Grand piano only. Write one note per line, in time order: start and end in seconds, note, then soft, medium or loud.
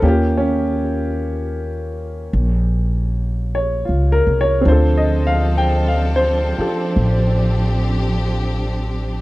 0.03 4.66 A#3 medium
0.03 0.36 C#4 soft
0.03 3.84 F4 medium
0.03 0.07 G4 medium
0.08 0.43 G4 medium
0.38 0.62 C#4 medium
3.55 3.90 C#5 medium
3.85 4.24 F4 soft
4.12 4.38 A#4 medium
4.41 4.62 C#5 medium
4.61 9.21 C4 medium
4.65 9.21 D4 soft
4.65 6.57 F4 soft
4.65 5.04 C5 medium
4.72 6.60 A4 medium
4.98 5.38 D#5 medium
5.27 5.53 F5 medium
5.58 5.79 G5 medium
5.88 6.22 F5 medium
6.16 6.40 C5 medium
6.58 9.21 F4 soft
6.58 9.21 G4 soft
6.58 9.21 A4 soft